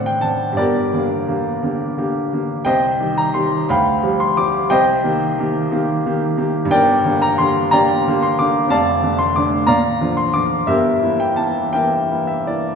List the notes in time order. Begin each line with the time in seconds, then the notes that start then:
Already playing: A2 D3 C4 D4 C5 D5 F#5
0.06 G5
0.21 D3 C4 D4 A5
0.53 G1 G2
0.57 G4 A#4 D5
0.94 D3 A#3 G4
1.28 D3 A#3 G4
1.63 D3 A#3 G4
1.97 D3 A#3 G4
2.33 D3 A#3 G4
2.65 C2 C5 D#5 G5
3.00 D#3 G3 G4
3.18 A#5
3.34 D#3 G3 G4 C6
3.69 D2 F5 G5 B5
4.03 F3 G3 G4
4.20 C6
4.37 F3 G3 G4 D6
4.70 C2 C5 D#5 G5
5.03 D#3 A#3 G4
5.38 D#3 A#3 G4
5.71 D#3 A#3 G4
6.06 D#3 A#3 G4
6.37 D#3 A#3 G4
6.65 G2
6.70 G1 A#4 D5 G5
7.05 D3 A#3 G4
7.22 A#5
7.38 D3 A#3 G4 C6
7.71 D3 A#3 G4 D5 G5 A#5
8.07 D3 A#3 G4
8.22 C6
8.39 D3 A#3 G4 D6
8.68 F1 F2 F5 A5
8.72 D5
9.03 D3 A3 D4
9.18 C6
9.36 D3 A3 D4 D6
9.67 A#2 D5 F5 A#5
10.01 D3 F3 F4
10.17 C6
10.34 D3 F3 F4 D6
10.67 G1 G2 G4 A#4 E5
11.02 E3 A#3 E4
11.20 G5
11.36 E3 A#3 E4 A5
11.73 E3 A#3 E4 A#4 E5 G5
12.11 E3 A#3 E4
12.27 E5
12.47 E3 A#3 E4 D5